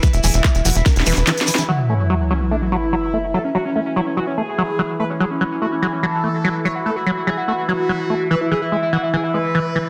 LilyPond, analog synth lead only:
\new Staff \with { instrumentName = "Analog synth lead" } { \time 4/4 \key fis \minor \tempo 4 = 145 << { b'8 gis'8 r8 fis'8 ais'8 b'4. | fis'8 cis'8 r8 cis'8 d'8 e'4. | a'8 fis'8 r8 e'8 fis'8 gis'4. | b'8 gis'8 r8 fis'8 gis'8 a'4. |
cis''8 a'8 r8 gis'8 fis'8 fis'4. | b'8 gis'8 r8 fis'8 gis'8 b'4. | } \\ { r16 e'16 r16 e'16 e'16 e'16 r16 e'16 r16 e'16 r4. | r16 fis16 r16 fis16 fis16 fis16 r16 fis16 r16 fis16 r4. | r16 cis'16 r16 cis'16 cis'16 cis'16 r16 cis'16 r16 cis'16 r4. | r16 cis'16 r16 cis'16 cis'16 cis'16 r16 cis'16 r16 cis'16 r4. |
r16 fis'16 r16 fis'16 fis'16 fis'16 r16 fis'16 r16 fis'16 r4. | r16 e'16 r16 e'16 e'16 e'16 r16 e'16 r16 e'16 r4. | } >> }